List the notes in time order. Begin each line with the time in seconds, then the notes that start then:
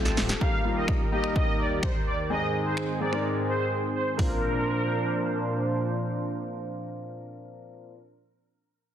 Already playing: F3 A3 C4 F4 G4 A4
0.05 C4 G4 A4, snare, closed hi-hat, shaker
0.17 D1 C4 G4 A4, snare, open hi-hat, shaker
0.29 muted clean electric guitar stroke, snare, closed hi-hat, shaker
0.41 D#2 D#3 G3 A#3 D#4 G4 A#4 F5, kick
0.65 G3 A#3 D#4 F4
0.76 D#5
0.88 finger snap, kick
1.12 G3 A#3 D#4 G4 D#5
1.24 finger snap
1.35 D#5, kick
1.59 D5
1.83 C5, finger snap, kick
2.06 D5
2.30 G#2 G#3 C4 D#4 G#4 D#5
2.66 C5
2.77 finger snap
3.01 G#3 C4 D#4 G#4 D5
3.13 G#3 C4 D#4 A#4, finger snap
3.48 C5
3.96 C5
4.17 A#2 F3 A#3 C4 D4 A#4 C5, kick, floor tom, open hi-hat
4.21 F4